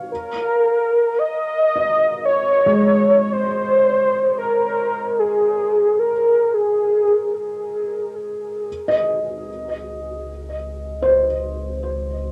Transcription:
0, 0, Header, 1, 4, 480
1, 0, Start_track
1, 0, Key_signature, -5, "major"
1, 0, Tempo, 1071429
1, 45, Time_signature, 4, 2, 24, 8
1, 5518, End_track
2, 0, Start_track
2, 0, Title_t, "Felt piano"
2, 0, Program_c, 0, 0
2, 0, Control_c, 0, 64, 127
2, 0, Note_on_c, 0, 77, 42
2, 50, Control_c, 0, 64, 0
2, 132, Control_c, 0, 64, 127
2, 787, Note_on_c, 0, 75, 46
2, 881, Note_off_c, 0, 77, 0
2, 1193, Note_on_c, 0, 56, 45
2, 2740, Note_off_c, 0, 75, 0
2, 3147, Note_off_c, 0, 56, 0
2, 3891, Control_c, 0, 64, 0
2, 3979, Note_on_c, 0, 75, 49
2, 3981, Control_c, 0, 64, 127
2, 4939, Note_on_c, 0, 72, 49
2, 5036, Note_off_c, 0, 75, 0
2, 5518, Note_off_c, 0, 72, 0
2, 5518, End_track
3, 0, Start_track
3, 0, Title_t, "Soft synth lead"
3, 0, Program_c, 1, 80
3, 52, Note_on_c, 1, 70, 105
3, 530, Note_on_c, 1, 75, 116
3, 537, Note_off_c, 1, 70, 0
3, 1008, Note_off_c, 1, 75, 0
3, 1010, Note_on_c, 1, 73, 105
3, 1490, Note_on_c, 1, 72, 114
3, 1497, Note_off_c, 1, 73, 0
3, 1962, Note_off_c, 1, 72, 0
3, 1965, Note_on_c, 1, 70, 105
3, 2325, Note_on_c, 1, 68, 86
3, 2332, Note_off_c, 1, 70, 0
3, 2683, Note_on_c, 1, 70, 87
3, 2690, Note_off_c, 1, 68, 0
3, 2929, Note_on_c, 1, 68, 83
3, 2936, Note_off_c, 1, 70, 0
3, 3407, Note_off_c, 1, 68, 0
3, 5518, End_track
4, 0, Start_track
4, 0, Title_t, "Sub bass"
4, 0, Program_c, 2, 38
4, 3882, Note_on_c, 2, 37, 101
4, 5518, Note_off_c, 2, 37, 0
4, 5518, End_track
0, 0, End_of_file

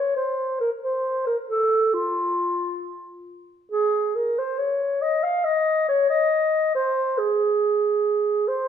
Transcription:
0, 0, Header, 1, 2, 480
1, 0, Start_track
1, 0, Tempo, 887574
1, 565, Time_signature, 3, 2, 24, 8
1, 2009, Tempo, 863309
1, 4770, End_track
2, 0, Start_track
2, 0, Title_t, "Clarinet"
2, 0, Program_c, 0, 71
2, 0, Note_on_c, 0, 73, 56
2, 86, Note_off_c, 0, 73, 0
2, 90, Note_on_c, 0, 72, 55
2, 322, Note_off_c, 0, 72, 0
2, 326, Note_on_c, 0, 70, 59
2, 380, Note_off_c, 0, 70, 0
2, 446, Note_on_c, 0, 72, 61
2, 680, Note_off_c, 0, 72, 0
2, 686, Note_on_c, 0, 70, 54
2, 740, Note_off_c, 0, 70, 0
2, 807, Note_on_c, 0, 69, 60
2, 1048, Note_on_c, 0, 65, 50
2, 1056, Note_off_c, 0, 69, 0
2, 1772, Note_off_c, 0, 65, 0
2, 2011, Note_on_c, 0, 68, 70
2, 2252, Note_on_c, 0, 70, 64
2, 2260, Note_off_c, 0, 68, 0
2, 2381, Note_on_c, 0, 72, 57
2, 2389, Note_off_c, 0, 70, 0
2, 2493, Note_on_c, 0, 73, 64
2, 2501, Note_off_c, 0, 72, 0
2, 2733, Note_on_c, 0, 75, 57
2, 2742, Note_off_c, 0, 73, 0
2, 2853, Note_on_c, 0, 77, 64
2, 2861, Note_off_c, 0, 75, 0
2, 2971, Note_on_c, 0, 75, 67
2, 2979, Note_off_c, 0, 77, 0
2, 3211, Note_off_c, 0, 75, 0
2, 3215, Note_on_c, 0, 73, 71
2, 3329, Note_off_c, 0, 73, 0
2, 3333, Note_on_c, 0, 75, 67
2, 3686, Note_off_c, 0, 75, 0
2, 3696, Note_on_c, 0, 72, 70
2, 3937, Note_on_c, 0, 68, 67
2, 3946, Note_off_c, 0, 72, 0
2, 4658, Note_on_c, 0, 72, 71
2, 4667, Note_off_c, 0, 68, 0
2, 4770, Note_off_c, 0, 72, 0
2, 4770, End_track
0, 0, End_of_file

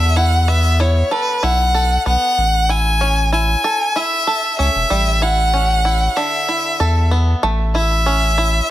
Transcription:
0, 0, Header, 1, 4, 480
1, 0, Start_track
1, 0, Key_signature, 3, "major"
1, 0, Tempo, 631579
1, 1809, Time_signature, 4, 2, 24, 8
1, 6614, End_track
2, 0, Start_track
2, 0, Title_t, "Violin"
2, 0, Program_c, 0, 40
2, 0, Note_on_c, 0, 76, 104
2, 126, Note_on_c, 0, 78, 102
2, 138, Note_off_c, 0, 76, 0
2, 367, Note_on_c, 0, 76, 101
2, 379, Note_off_c, 0, 78, 0
2, 612, Note_on_c, 0, 73, 86
2, 624, Note_off_c, 0, 76, 0
2, 851, Note_on_c, 0, 71, 93
2, 862, Note_off_c, 0, 73, 0
2, 1091, Note_on_c, 0, 78, 105
2, 1102, Note_off_c, 0, 71, 0
2, 1570, Note_off_c, 0, 78, 0
2, 1573, Note_on_c, 0, 78, 115
2, 2051, Note_on_c, 0, 80, 118
2, 2063, Note_off_c, 0, 78, 0
2, 2528, Note_off_c, 0, 80, 0
2, 2532, Note_on_c, 0, 80, 104
2, 3013, Note_on_c, 0, 76, 110
2, 3024, Note_off_c, 0, 80, 0
2, 3483, Note_off_c, 0, 76, 0
2, 3488, Note_on_c, 0, 76, 109
2, 3971, Note_on_c, 0, 78, 109
2, 3982, Note_off_c, 0, 76, 0
2, 4688, Note_on_c, 0, 76, 96
2, 4700, Note_off_c, 0, 78, 0
2, 5409, Note_off_c, 0, 76, 0
2, 5891, Note_on_c, 0, 76, 101
2, 6614, Note_off_c, 0, 76, 0
2, 6614, End_track
3, 0, Start_track
3, 0, Title_t, "Five-string banjo"
3, 0, Program_c, 1, 105
3, 0, Note_on_c, 1, 50, 71
3, 0, Note_on_c, 1, 59, 61
3, 0, Note_on_c, 1, 69, 67
3, 126, Note_on_c, 1, 64, 56
3, 363, Note_off_c, 1, 64, 0
3, 366, Note_off_c, 1, 59, 0
3, 366, Note_on_c, 1, 59, 63
3, 389, Note_off_c, 1, 69, 0
3, 607, Note_on_c, 1, 64, 58
3, 843, Note_off_c, 1, 64, 0
3, 846, Note_on_c, 1, 69, 64
3, 1086, Note_on_c, 1, 64, 60
3, 1323, Note_off_c, 1, 69, 0
3, 1326, Note_on_c, 1, 69, 68
3, 1557, Note_off_c, 1, 59, 0
3, 1566, Note_on_c, 1, 59, 63
3, 1809, Note_off_c, 1, 50, 0
3, 1855, Note_off_c, 1, 59, 0
3, 2047, Note_off_c, 1, 64, 0
3, 2047, Note_on_c, 1, 64, 55
3, 2288, Note_on_c, 1, 61, 59
3, 2390, Note_off_c, 1, 69, 0
3, 2527, Note_off_c, 1, 64, 0
3, 2527, Note_on_c, 1, 64, 65
3, 2769, Note_on_c, 1, 69, 68
3, 3005, Note_off_c, 1, 64, 0
3, 3009, Note_on_c, 1, 64, 62
3, 3248, Note_off_c, 1, 69, 0
3, 3248, Note_on_c, 1, 69, 70
3, 3479, Note_off_c, 1, 61, 0
3, 3488, Note_on_c, 1, 61, 61
3, 3723, Note_off_c, 1, 61, 0
3, 3726, Note_on_c, 1, 55, 77
3, 3967, Note_off_c, 1, 64, 0
3, 3967, Note_on_c, 1, 64, 55
3, 4208, Note_on_c, 1, 61, 61
3, 4312, Note_off_c, 1, 69, 0
3, 4446, Note_off_c, 1, 64, 0
3, 4446, Note_on_c, 1, 64, 62
3, 4684, Note_off_c, 1, 55, 0
3, 4688, Note_on_c, 1, 50, 78
3, 4736, Note_off_c, 1, 61, 0
3, 4929, Note_off_c, 1, 64, 0
3, 4929, Note_on_c, 1, 64, 56
3, 5168, Note_on_c, 1, 69, 68
3, 5407, Note_on_c, 1, 59, 66
3, 5644, Note_off_c, 1, 50, 0
3, 5647, Note_on_c, 1, 57, 84
3, 5696, Note_off_c, 1, 59, 0
3, 5888, Note_off_c, 1, 64, 0
3, 5888, Note_on_c, 1, 64, 59
3, 6128, Note_on_c, 1, 61, 65
3, 6232, Note_off_c, 1, 69, 0
3, 6359, Note_off_c, 1, 64, 0
3, 6368, Note_on_c, 1, 64, 64
3, 6605, Note_off_c, 1, 61, 0
3, 6614, Note_off_c, 1, 57, 0
3, 6614, Note_off_c, 1, 64, 0
3, 6614, End_track
4, 0, Start_track
4, 0, Title_t, "Sub bass"
4, 0, Program_c, 2, 38
4, 0, Note_on_c, 2, 40, 91
4, 783, Note_off_c, 2, 40, 0
4, 1087, Note_on_c, 2, 35, 82
4, 1503, Note_off_c, 2, 35, 0
4, 1566, Note_on_c, 2, 35, 108
4, 1647, Note_off_c, 2, 35, 0
4, 1807, Note_on_c, 2, 33, 97
4, 2703, Note_off_c, 2, 33, 0
4, 3490, Note_on_c, 2, 37, 89
4, 3569, Note_off_c, 2, 37, 0
4, 3610, Note_on_c, 2, 28, 72
4, 3689, Note_off_c, 2, 28, 0
4, 3728, Note_on_c, 2, 33, 98
4, 4624, Note_off_c, 2, 33, 0
4, 5167, Note_on_c, 2, 40, 87
4, 5583, Note_off_c, 2, 40, 0
4, 5648, Note_on_c, 2, 33, 90
4, 6544, Note_off_c, 2, 33, 0
4, 6614, End_track
0, 0, End_of_file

